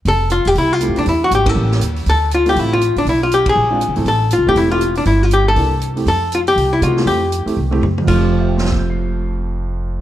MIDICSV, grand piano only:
0, 0, Header, 1, 2, 480
1, 0, Start_track
1, 0, Key_signature, -1, "major"
1, 0, Tempo, 250417
1, 113, Time_signature, 4, 2, 24, 8
1, 19191, End_track
2, 0, Start_track
2, 0, Title_t, "Grand piano"
2, 0, Program_c, 0, 0
2, 1545, Note_on_c, 0, 57, 55
2, 1569, Note_on_c, 0, 60, 48
2, 1579, Note_on_c, 0, 64, 49
2, 1589, Note_on_c, 0, 67, 60
2, 2027, Note_off_c, 0, 57, 0
2, 2039, Note_off_c, 0, 60, 0
2, 2044, Note_off_c, 0, 64, 0
2, 2049, Note_off_c, 0, 67, 0
2, 2785, Note_on_c, 0, 58, 62
2, 2789, Note_on_c, 0, 61, 55
2, 2805, Note_on_c, 0, 64, 59
2, 2825, Note_on_c, 0, 67, 68
2, 3423, Note_off_c, 0, 58, 0
2, 3425, Note_off_c, 0, 61, 0
2, 3433, Note_off_c, 0, 64, 0
2, 3443, Note_off_c, 0, 67, 0
2, 4709, Note_on_c, 0, 57, 59
2, 4720, Note_on_c, 0, 60, 48
2, 4727, Note_on_c, 0, 64, 52
2, 4739, Note_on_c, 0, 65, 60
2, 5343, Note_off_c, 0, 57, 0
2, 5349, Note_off_c, 0, 60, 0
2, 5352, Note_off_c, 0, 64, 0
2, 5358, Note_off_c, 0, 65, 0
2, 7097, Note_on_c, 0, 56, 67
2, 7105, Note_on_c, 0, 60, 60
2, 7118, Note_on_c, 0, 62, 57
2, 7132, Note_on_c, 0, 65, 71
2, 7276, Note_off_c, 0, 56, 0
2, 7280, Note_off_c, 0, 60, 0
2, 7287, Note_off_c, 0, 62, 0
2, 7293, Note_off_c, 0, 65, 0
2, 7588, Note_on_c, 0, 57, 61
2, 7600, Note_on_c, 0, 60, 57
2, 7609, Note_on_c, 0, 64, 56
2, 7624, Note_on_c, 0, 69, 68
2, 7761, Note_off_c, 0, 57, 0
2, 7767, Note_off_c, 0, 60, 0
2, 7771, Note_off_c, 0, 64, 0
2, 7779, Note_off_c, 0, 69, 0
2, 8556, Note_on_c, 0, 57, 64
2, 8566, Note_on_c, 0, 60, 58
2, 8578, Note_on_c, 0, 64, 59
2, 8586, Note_on_c, 0, 67, 67
2, 8993, Note_off_c, 0, 57, 0
2, 9005, Note_off_c, 0, 60, 0
2, 9012, Note_off_c, 0, 64, 0
2, 9017, Note_off_c, 0, 67, 0
2, 9022, Note_on_c, 0, 57, 60
2, 9034, Note_on_c, 0, 60, 56
2, 9046, Note_on_c, 0, 64, 58
2, 9057, Note_on_c, 0, 67, 70
2, 9198, Note_off_c, 0, 57, 0
2, 9204, Note_off_c, 0, 60, 0
2, 9210, Note_off_c, 0, 64, 0
2, 9216, Note_off_c, 0, 67, 0
2, 10660, Note_on_c, 0, 58, 51
2, 10668, Note_on_c, 0, 62, 45
2, 10681, Note_on_c, 0, 64, 44
2, 10688, Note_on_c, 0, 69, 53
2, 10917, Note_off_c, 0, 58, 0
2, 10921, Note_off_c, 0, 62, 0
2, 10928, Note_off_c, 0, 64, 0
2, 10932, Note_off_c, 0, 69, 0
2, 11428, Note_on_c, 0, 57, 57
2, 11435, Note_on_c, 0, 60, 51
2, 11450, Note_on_c, 0, 64, 52
2, 11457, Note_on_c, 0, 67, 61
2, 11602, Note_off_c, 0, 57, 0
2, 11606, Note_off_c, 0, 60, 0
2, 11614, Note_off_c, 0, 64, 0
2, 11617, Note_off_c, 0, 67, 0
2, 13064, Note_on_c, 0, 56, 56
2, 13067, Note_on_c, 0, 59, 53
2, 13079, Note_on_c, 0, 63, 52
2, 13096, Note_on_c, 0, 66, 61
2, 13322, Note_off_c, 0, 56, 0
2, 13323, Note_off_c, 0, 59, 0
2, 13329, Note_off_c, 0, 63, 0
2, 13337, Note_off_c, 0, 66, 0
2, 13346, Note_on_c, 0, 57, 59
2, 13352, Note_on_c, 0, 60, 53
2, 13360, Note_on_c, 0, 64, 52
2, 13376, Note_on_c, 0, 67, 61
2, 13772, Note_off_c, 0, 57, 0
2, 13775, Note_off_c, 0, 60, 0
2, 13779, Note_off_c, 0, 64, 0
2, 13787, Note_off_c, 0, 67, 0
2, 14298, Note_on_c, 0, 57, 57
2, 14310, Note_on_c, 0, 60, 51
2, 14325, Note_on_c, 0, 64, 51
2, 14330, Note_on_c, 0, 67, 58
2, 14480, Note_off_c, 0, 57, 0
2, 14486, Note_off_c, 0, 60, 0
2, 14494, Note_off_c, 0, 64, 0
2, 14496, Note_off_c, 0, 67, 0
2, 14777, Note_on_c, 0, 57, 72
2, 14784, Note_on_c, 0, 60, 61
2, 14803, Note_on_c, 0, 64, 62
2, 14813, Note_on_c, 0, 67, 71
2, 14960, Note_off_c, 0, 57, 0
2, 14964, Note_off_c, 0, 60, 0
2, 14973, Note_off_c, 0, 64, 0
2, 14978, Note_off_c, 0, 67, 0
2, 15368, Note_on_c, 0, 41, 58
2, 15428, Note_on_c, 0, 53, 55
2, 15483, Note_on_c, 0, 57, 54
2, 15545, Note_on_c, 0, 65, 58
2, 15598, Note_on_c, 0, 67, 62
2, 15970, Note_on_c, 0, 72, 43
2, 16114, Note_on_c, 0, 76, 43
2, 16264, Note_on_c, 0, 79, 42
2, 16433, Note_on_c, 0, 84, 37
2, 16633, Note_on_c, 0, 88, 37
2, 16836, Note_on_c, 0, 91, 35
2, 17058, Note_on_c, 0, 96, 32
2, 19191, Note_off_c, 0, 41, 0
2, 19191, Note_off_c, 0, 53, 0
2, 19191, Note_off_c, 0, 57, 0
2, 19191, Note_off_c, 0, 65, 0
2, 19191, Note_off_c, 0, 67, 0
2, 19191, Note_off_c, 0, 72, 0
2, 19191, Note_off_c, 0, 76, 0
2, 19191, Note_off_c, 0, 79, 0
2, 19191, Note_off_c, 0, 84, 0
2, 19191, Note_off_c, 0, 88, 0
2, 19191, Note_off_c, 0, 91, 0
2, 19191, Note_off_c, 0, 96, 0
2, 19191, End_track
0, 0, End_of_file